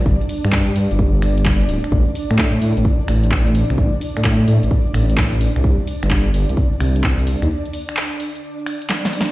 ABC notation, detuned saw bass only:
X:1
M:4/4
L:1/16
Q:"Swing 16ths" 1/4=129
K:Cmix
V:1 name="Detuned saw bass" clef=bass
G,,, z2 G,,3 G,, G,,, G,,,6 D,,, z | A,,, z2 A,,3 A,, A,,, z2 A,,,4- A,,, C,, | A,,, z2 A,,3 A,, A,,, z2 A,,,4- A,,, C,, | C,, z2 G,,,3 G,,, C,, z2 C,,4- C,, _E,, |
z16 |]